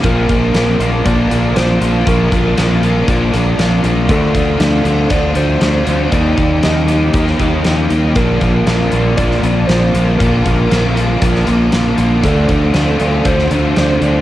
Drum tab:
HH |x-x-x-x-x-x-x-x-|x-x-x-x-x-x-x-x-|x-x-x-x-x-x-x-x-|x-x-x-x-x-x-x-x-|
SD |----o-------o---|----o-------o---|----o-------o---|----o----o--o---|
BD |o-o-----o-------|o-o-----o-------|o-o-----o-------|o-o-----o-o-----|

HH |x-x-x-x-x-x-x-x-|x-x-x-x-x-x-x-x-|x-x-x-x-x-x-x-x-|
SD |----o----o--o---|----o----o--o---|----o----o--o---|
BD |o-o-----o-------|o-o-----o-------|o-o-----o-------|